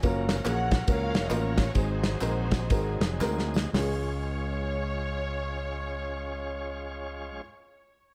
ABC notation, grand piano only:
X:1
M:4/4
L:1/8
Q:"Swing" 1/4=109
K:Db
V:1 name="Grand piano"
[B,DFGB] z [B,DFGA] z [B,DFGB] z [B,DFGB] z | [A,CEGA] z [A,CEGB] z [A,CEGB] z [A,CEGB] z | [A,DFA]8- | [A,DFA]8 |]
V:2 name="Grand piano" clef=bass
z8 | A,,3 z4 z | D,,8- | D,,8 |]